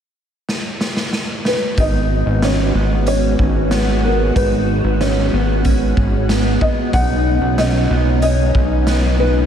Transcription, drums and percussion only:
0.49 snare
0.81 snare
0.97 snare
1.13 snare
1.45 snare
1.78 kick, closed hi-hat
2.42 snare, closed hi-hat
3.07 closed hi-hat
3.39 kick
3.71 snare, closed hi-hat
4.36 kick, closed hi-hat
5.01 snare, closed hi-hat
5.65 kick, closed hi-hat
5.97 kick
6.29 snare, closed hi-hat
6.61 kick
6.93 kick, closed hi-hat
7.58 snare, closed hi-hat
8.22 closed hi-hat
8.55 kick
8.87 snare, closed hi-hat

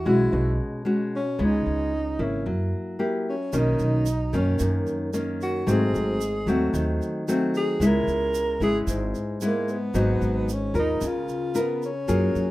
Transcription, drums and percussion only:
3.53 shaker
3.79 shaker
4.06 shaker
4.33 shaker
4.59 shaker
4.87 shaker
5.14 shaker
5.41 shaker
5.68 shaker
5.95 shaker
6.21 shaker
6.48 shaker
6.74 shaker
7.02 shaker
7.28 shaker
7.55 shaker
7.82 shaker
8.08 shaker
8.34 shaker
8.61 shaker
8.88 shaker
9.15 shaker
9.41 shaker
9.68 shaker
9.94 shaker
10.22 shaker
10.49 shaker
10.75 shaker
11.01 shaker
11.29 shaker
11.55 shaker
11.82 shaker
12.08 shaker
12.35 shaker

